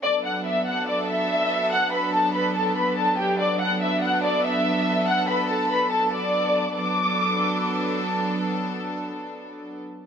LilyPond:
<<
  \new Staff \with { instrumentName = "Violin section" } { \time 4/4 \key b \minor \tempo 4 = 143 <d'' d'''>8 <fis'' fis'''>8 <e'' e'''>8 <fis'' fis'''>8 <d'' d'''>8 <e'' e'''>4. | <fis'' fis'''>8 <b' b''>8 <a' a''>8 <b' b''>8 <a' a''>8 <b' b''>8 <a' a''>8 <g' g''>8 | <d'' d'''>8 <fis'' fis'''>8 <e'' e'''>8 <fis'' fis'''>8 <d'' d'''>8 <e'' e'''>4. | <fis'' fis'''>8 <b' b''>8 <a' a''>8 <b' b''>8 <a' a''>8 <d'' d'''>4. |
d'''2. r4 | r1 | }
  \new Staff \with { instrumentName = "String section" } { \time 4/4 \key b \minor << { a'1~ | a'1 | a'1~ | a'1 |
<fis b d' a'>1~ | <fis b d' a'>1 | } \\ { <fis b d'>1~ | <fis b d'>1~ | <fis b d'>1~ | <fis b d'>1 |
r1 | r1 | } >> }
>>